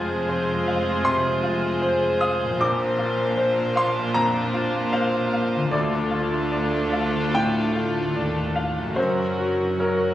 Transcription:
0.00 2.61 F1 medium
0.00 1.03 F2 medium
0.00 2.55 F2 soft
0.00 2.61 F2 medium
0.00 2.61 G#3 medium
0.00 2.46 C4 soft
0.00 0.53 F4 soft
0.00 2.51 F4 soft
0.00 2.61 F4 medium
0.00 2.57 G#4 medium
0.00 2.62 G#4 soft
0.00 5.69 C5 medium
0.00 1.02 G#5 medium
0.29 0.91 C5 soft
0.67 1.29 F5 soft
1.05 1.67 C3 soft
1.05 2.17 C6 medium
1.43 2.06 F4 soft
1.82 2.45 C5 soft
2.21 2.61 F5 soft
2.21 2.58 D#6 medium
2.43 5.67 A#2 medium
2.47 5.69 C4 soft
2.52 5.63 F4 soft
2.57 4.11 A#1 medium
2.57 5.74 A#4 soft
2.61 5.69 A#1 medium
2.61 5.69 A#2 medium
2.61 5.69 A#3 medium
2.61 5.72 D4 medium
2.61 5.69 F4 medium
2.61 3.73 D6 medium
2.98 3.61 F4 soft
3.37 4.00 C5 soft
3.76 4.38 F5 soft
3.76 4.13 C6 medium
4.14 4.78 F2 soft
4.14 4.89 A#5 medium
4.54 5.17 F4 soft
4.93 5.57 C5 soft
4.93 5.30 F5 medium
5.33 5.73 F5 soft
5.55 8.91 D3 soft
5.60 8.94 D4 soft
5.64 8.96 F4 soft
5.69 8.11 D2 medium
5.69 7.30 D2 soft
5.69 8.11 D2 medium
5.69 8.98 A4 soft
5.69 6.50 D5 medium
5.73 8.93 A3 medium
5.73 8.93 D4 medium
5.73 8.93 F4 medium
5.73 8.93 A4 medium
6.11 6.76 F4 soft
6.52 7.18 D5 soft
6.93 7.59 F5 soft
7.34 7.99 A2 soft
7.34 8.52 G5 medium
7.76 8.40 F4 soft
8.15 8.97 D#2 soft
8.15 8.80 D5 soft
8.56 8.94 F5 soft
8.79 10.14 F#2 soft
8.83 10.14 C#4 soft
8.88 10.14 F#4 soft
8.93 10.14 A#4 soft
8.93 9.78 A#4 soft
8.93 9.75 C5 medium
8.97 10.14 F#1 soft
8.97 10.14 F#2 soft
8.97 9.78 F#3 soft
8.97 9.80 C#4 soft
8.97 9.77 F#4 soft
9.38 10.04 F#4 soft
9.78 10.14 F#3 soft
9.78 10.14 C#4 soft
9.78 10.14 F#4 soft
9.78 10.14 A#4 soft
9.78 10.14 C#5 soft

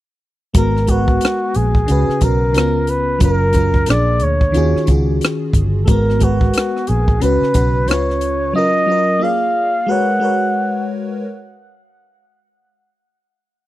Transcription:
0.54 1.18 G#1 medium
0.54 0.85 G#3 medium
0.54 0.87 F#4 medium
0.54 0.88 A#4 medium
0.54 0.91 A#4 medium
0.54 kick loud
0.54 closed hi-hat medium
0.58 0.88 B3 medium
0.77 cross-stick soft
0.86 1.87 G#3 medium
0.86 1.88 F#4 medium
0.86 1.58 F#4 medium
0.86 1.89 A#4 medium
0.86 kick medium
0.86 closed hi-hat medium
0.92 1.90 B4 medium
1.08 kick medium
1.21 closed hi-hat medium
1.25 cross-stick medium
1.54 1.86 A#1 medium
1.54 2.25 G#4 medium
1.54 closed hi-hat medium
1.75 kick medium
1.86 2.06 C#2 medium
1.86 2.18 C#3 medium
1.86 2.20 C#4 medium
1.86 2.21 F#4 medium
1.86 closed hi-hat medium
1.92 2.22 B4 medium
2.08 muted fingered electric bass stroke soft
2.08 cross-stick soft
2.20 2.56 B1 medium
2.20 2.52 C#3 medium
2.20 2.53 C#4 medium
2.20 2.55 F#4 medium
2.20 2.91 A#4 medium
2.20 kick medium
2.20 closed hi-hat medium
2.25 2.56 A#4 medium
2.53 3.18 C#2 medium
2.53 3.17 C#3 medium
2.53 3.18 C#4 medium
2.53 3.19 F4 medium
2.53 closed hi-hat medium
2.58 3.20 B3 medium
2.58 cross-stick medium
2.87 3.22 B4 medium
2.87 closed hi-hat medium
3.19 3.84 F#1 medium
3.19 3.51 F#3 medium
3.19 3.53 C#4 medium
3.19 3.53 F4 medium
3.19 kick loud
3.19 closed hi-hat medium
3.23 3.91 A#4 medium
3.23 3.54 A#4 medium
3.53 3.87 F#3 medium
3.53 3.88 C#4 medium
3.53 3.88 F4 medium
3.53 kick medium
3.53 closed hi-hat medium
3.57 3.89 A#4 medium
3.74 kick medium
3.86 4.23 A#1 medium
3.86 4.51 A#2 medium
3.86 4.51 A#3 soft
3.86 4.52 D4 medium
3.86 4.24 D5 medium
3.86 closed hi-hat medium
3.90 4.53 G#4 medium
3.90 cross-stick medium
4.20 4.52 D2 medium
4.20 4.89 C#5 medium
4.20 closed hi-hat medium
4.41 kick medium
4.52 4.85 D#3 medium
4.52 4.86 C#4 medium
4.52 4.86 F4 medium
4.52 4.87 F#4 medium
4.52 closed hi-hat medium
4.56 4.73 D#2 medium
4.56 4.88 G#4 medium
4.75 muted fingered electric bass stroke soft
4.75 cross-stick soft
4.86 5.18 C#2 medium
4.86 5.82 D#3 medium
4.86 5.83 C#4 medium
4.86 5.84 F4 medium
4.86 5.84 F#4 medium
4.86 kick medium
4.86 closed hi-hat medium
4.91 5.85 G#4 medium
5.21 cross-stick medium
5.21 closed hi-hat medium
5.53 5.85 G1 medium
5.53 kick medium
5.53 closed hi-hat medium
5.84 6.18 G#3 medium
5.84 6.19 F#4 medium
5.84 5.91 A4 medium
5.84 kick loud
5.84 closed hi-hat medium
5.89 6.51 G#1 medium
5.89 6.21 B3 medium
5.89 6.25 A#4 medium
5.89 6.20 A#4 medium
6.10 cross-stick soft
6.19 7.20 G#3 medium
6.19 7.21 F#4 medium
6.19 6.90 F#4 medium
6.19 7.22 A#4 medium
6.19 kick medium
6.19 closed hi-hat medium
6.24 7.23 B4 medium
6.41 kick medium
6.54 closed hi-hat medium
6.58 cross-stick medium
6.77 cross-stick soft
6.87 7.19 A#1 medium
6.87 7.24 G#4 medium
6.87 closed hi-hat medium
7.08 kick medium
7.20 7.39 C#2 medium
7.20 7.52 C#3 medium
7.20 7.53 C#4 medium
7.20 7.54 F#4 medium
7.20 7.91 B4 medium
7.20 closed hi-hat medium
7.25 7.55 B4 medium
7.42 muted fingered electric bass stroke soft
7.42 cross-stick soft
7.53 7.89 B1 medium
7.53 7.85 C#3 medium
7.53 7.87 C#4 medium
7.53 7.89 F#4 medium
7.53 kick medium
7.53 closed hi-hat medium
7.58 7.90 B4 medium
7.86 8.51 C#2 medium
7.86 8.51 C#3 medium
7.86 8.52 C#4 medium
7.86 8.53 F4 medium
7.86 8.55 C#5 medium
7.86 closed hi-hat medium
7.91 8.53 B4 medium
7.91 cross-stick loud
8.10 cross-stick soft
8.21 closed hi-hat medium
8.53 8.85 F#3 medium
8.53 8.86 C#4 medium
8.53 8.87 F4 medium
8.53 9.24 D#5 loud
8.58 8.88 A#4 medium
8.86 9.20 F#3 medium
8.86 9.21 C#4 medium
8.86 9.20 F4 medium
8.92 9.23 A#4 medium
9.19 9.84 A#3 medium
9.19 9.85 F4 medium
9.19 9.86 G#4 medium
9.19 9.91 F5 loud
9.24 9.87 D5 medium
9.86 10.18 G#3 medium
9.86 10.20 F#4 medium
9.86 10.20 A#4 medium
9.86 10.21 B4 medium
9.86 10.89 F#5 medium
9.92 10.22 C#5 medium
10.20 11.16 G#3 medium
10.20 11.17 F#4 medium
10.20 11.17 A#4 medium
10.20 11.18 B4 medium
10.24 11.18 C#5 medium

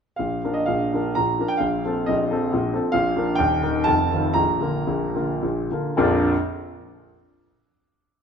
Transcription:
0.16 0.43 A#1 soft
0.16 0.42 A#2 soft
0.16 0.54 F5 medium
0.44 0.66 F3 soft
0.44 0.67 D4 soft
0.44 0.67 A#4 soft
0.54 0.67 D#5 medium
0.66 0.92 A#1 soft
0.66 0.92 A#2 soft
0.66 1.16 F5 medium
0.94 1.15 F3 soft
0.94 1.15 D4 soft
0.94 1.16 A#4 soft
1.15 1.39 A#1 soft
1.15 1.39 A#2 soft
1.15 1.50 A#5 medium
1.39 1.59 F3 soft
1.39 1.60 D4 soft
1.39 1.60 A#4 soft
1.48 1.61 G5 medium
1.57 1.83 A#1 soft
1.57 1.83 A#2 soft
1.57 2.06 F5 medium
1.85 2.06 F3 soft
1.85 2.06 C4 soft
1.85 2.06 A4 soft
2.06 2.32 A#1 soft
2.06 2.31 A#2 soft
2.06 2.75 D#5 medium
2.31 2.51 F3 soft
2.31 2.52 C4 soft
2.31 2.51 A4 soft
2.52 2.74 A#1 soft
2.52 2.75 A#2 soft
2.73 2.93 F3 soft
2.73 2.93 C4 soft
2.73 2.93 A4 soft
2.92 3.15 A#1 soft
2.92 3.15 A#2 medium
2.92 3.36 F5 medium
3.17 3.36 F3 soft
3.17 3.36 D4 soft
3.17 3.37 A#4 soft
3.35 3.61 D#1 medium
3.35 3.61 D#2 medium
3.35 3.85 G5 medium
3.62 3.84 D#3 soft
3.62 3.85 D#4 soft
3.62 3.85 A#4 soft
3.84 4.11 F1 medium
3.84 4.10 F2 medium
3.84 4.35 A5 medium
4.12 4.34 D#3 soft
4.12 4.34 C4 soft
4.12 4.35 F4 soft
4.34 4.61 A#1 soft
4.34 4.60 A#2 soft
4.34 5.42 A#5 medium
4.61 4.85 D3 soft
4.61 4.86 A#3 soft
4.61 4.85 F4 soft
4.87 5.15 A#1 soft
4.87 5.14 A#2 soft
5.15 5.40 D3 soft
5.15 5.40 A#3 soft
5.15 5.40 F4 soft
5.42 5.69 A#1 soft
5.42 5.69 A#2 soft
5.71 5.94 D3 soft
5.71 5.95 A#3 soft
5.71 5.95 F4 soft
5.97 6.24 A#1 medium
5.97 6.24 F2 medium
5.97 6.25 F3 medium
5.97 6.24 A#3 medium
5.97 6.25 D4 medium
5.97 6.25 F4 medium

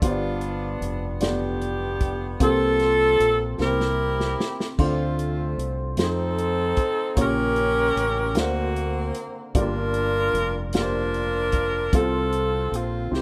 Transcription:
0.02 0.77 G1 loud
0.02 1.18 G2 medium
0.02 0.89 B3 medium
0.02 1.18 B3 medium
0.02 0.89 D4 medium
0.02 1.19 D4 medium
0.02 0.89 F4 medium
0.02 0.78 F4 medium
0.02 0.90 G4 medium
0.02 0.09 C5 medium
0.02 kick loud
0.02 closed hi-hat loud
0.10 0.93 D5 medium
0.41 closed hi-hat medium
0.80 2.36 F1 medium
0.80 closed hi-hat medium
1.20 1.27 A3 medium
1.20 2.38 B3 medium
1.20 2.08 D4 medium
1.20 2.37 D4 medium
1.20 2.08 F4 medium
1.20 2.08 G4 medium
1.20 2.37 G4 loud
1.20 2.08 D5 medium
1.20 snare loud
1.20 closed hi-hat medium
1.26 2.11 B3 medium
1.61 closed hi-hat medium
2.01 kick loud
2.01 closed hi-hat medium
2.40 3.16 C2 loud
2.40 3.56 C3 medium
2.40 3.27 A#3 medium
2.40 3.27 C4 medium
2.40 3.28 F4 medium
2.40 3.45 F4 medium
2.40 3.28 G4 medium
2.40 3.45 A4 loud
2.40 3.28 C5 medium
2.40 kick loud
2.40 closed hi-hat loud
2.79 snare soft
2.79 closed hi-hat medium
3.20 3.56 A#1 medium
3.20 closed hi-hat medium
3.59 4.35 C2 medium
3.59 4.75 C3 medium
3.59 4.46 A#3 medium
3.59 4.46 C4 medium
3.59 4.47 E4 medium
3.59 4.76 E4 medium
3.59 4.47 G4 medium
3.59 4.76 G4 medium
3.59 4.50 A#4 loud
3.59 4.47 C5 medium
3.59 snare medium
3.80 snare medium
4.20 snare medium
4.40 snare loud
4.60 snare medium
4.78 5.54 D2 loud
4.78 5.94 D3 medium
4.78 5.65 A3 medium
4.78 5.66 C4 medium
4.78 5.66 D4 medium
4.78 5.66 F4 medium
4.78 5.66 C5 medium
4.78 kick loud
4.78 splash medium
4.83 5.96 A3 medium
4.83 5.96 C4 medium
4.83 5.56 F4 medium
5.19 closed hi-hat medium
5.58 5.94 C2 medium
5.58 closed hi-hat medium
5.97 6.73 F2 medium
5.97 6.84 A3 medium
5.97 6.85 C4 medium
5.97 6.85 D#4 medium
5.97 6.85 F4 medium
5.97 6.85 C5 medium
5.97 snare loud
5.97 closed hi-hat medium
6.02 7.15 C4 medium
6.02 7.15 D#4 medium
6.02 7.15 A4 loud
6.38 closed hi-hat medium
6.77 kick loud
6.77 closed hi-hat medium
7.15 7.92 A#1 loud
7.15 8.32 C#3 medium
7.15 8.03 A#3 medium
7.15 8.04 C#4 medium
7.15 8.04 F4 medium
7.15 8.04 G4 medium
7.15 8.04 C#5 medium
7.15 kick loud
7.15 closed hi-hat loud
7.20 8.34 C#4 medium
7.20 8.34 G4 loud
7.20 8.38 A#4 loud
7.56 closed hi-hat medium
7.96 8.35 A1 medium
7.96 closed hi-hat medium
8.35 9.11 D2 loud
8.35 9.52 D3 medium
8.35 9.23 A#3 medium
8.35 9.23 D4 medium
8.35 9.24 F#4 medium
8.35 9.24 C5 medium
8.35 9.23 F5 medium
8.35 snare loud
8.35 closed hi-hat medium
8.39 9.53 A#3 medium
8.39 9.53 C4 medium
8.39 9.23 F#4 loud
8.76 closed hi-hat soft
9.14 closed hi-hat medium
9.54 10.30 G1 loud
9.54 10.70 G2 medium
9.54 9.61 A3 medium
9.54 10.42 D4 medium
9.54 10.42 F4 medium
9.54 10.42 G4 medium
9.54 10.61 A#4 loud
9.54 10.43 D5 medium
9.54 kick loud
9.54 closed hi-hat loud
9.59 10.45 A#3 medium
9.59 10.60 D4 medium
9.59 10.61 F4 medium
9.94 closed hi-hat medium
10.33 11.89 F1 medium
10.33 closed hi-hat medium
10.73 11.61 A#3 medium
10.73 11.61 D4 medium
10.73 11.61 F4 medium
10.73 11.62 G4 medium
10.73 10.81 A#4 medium
10.73 snare loud
10.73 closed hi-hat medium
10.78 11.91 D4 medium
10.78 11.91 F4 medium
10.78 11.91 A#4 loud
10.82 11.65 C5 medium
11.14 closed hi-hat medium
11.52 kick loud
11.52 closed hi-hat medium
11.93 12.68 C2 loud
11.93 13.09 C3 medium
11.93 12.80 C4 medium
11.93 13.10 C4 medium
11.93 12.81 F4 medium
11.93 12.81 A4 medium
11.93 12.74 A4 loud
11.93 kick loud
11.93 closed hi-hat loud
11.97 12.73 F4 medium
12.32 closed hi-hat medium
12.72 13.09 A#1 medium
12.72 13.13 F4 medium
12.72 closed hi-hat medium
13.11 13.22 C2 loud
13.11 13.22 C3 medium
13.11 13.22 C4 medium
13.11 13.22 E4 medium
13.11 13.22 G4 medium
13.11 snare medium

